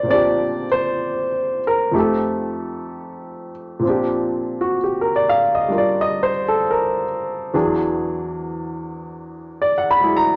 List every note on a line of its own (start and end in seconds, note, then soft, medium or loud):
0.00 1.92 A#2 soft
0.00 1.67 A#4 medium
0.00 0.72 C5 medium
0.00 0.10 D5 medium
0.06 1.91 F3 soft
0.06 1.94 C4 soft
0.10 1.96 D4 soft
0.10 1.94 G4 medium
0.10 0.65 D5 medium
0.72 1.59 C5 medium
1.67 1.97 A#4 medium
1.92 3.82 F2 soft
1.92 3.81 F3 soft
1.92 3.83 A3 soft
1.92 3.83 D#4 soft
1.96 3.84 G4 medium
1.96 3.49 A4 medium
3.79 7.52 A#2 medium
3.79 7.54 F3 soft
3.85 7.55 C4 medium
3.85 5.68 D4 soft
3.90 4.82 G4 medium
4.61 4.76 F#4 medium
4.84 5.00 G4 medium
5.01 5.09 A#4 medium
5.16 5.41 D5 medium
5.29 5.49 F5 medium
5.55 5.69 D#5 medium
5.68 7.54 G3 soft
5.68 7.53 D4 soft
5.68 7.55 F4 soft
5.68 6.69 A#4 soft
5.78 6.03 D5 medium
6.01 6.30 D#5 medium
6.23 6.42 C5 medium
6.48 6.62 A4 medium
6.71 7.04 A#4 medium
7.54 10.36 E2 medium
7.54 10.36 E3 soft
7.54 9.99 F#3 medium
7.54 10.36 D4 medium
7.54 10.02 G#4 medium
9.62 9.71 D5 medium
9.78 10.03 F#5 medium
9.91 10.11 B5 medium
10.00 10.36 F#3 soft
10.00 10.36 G#3 soft
10.00 10.36 E4 soft
10.00 10.36 G#4 soft
10.17 10.32 A#5 medium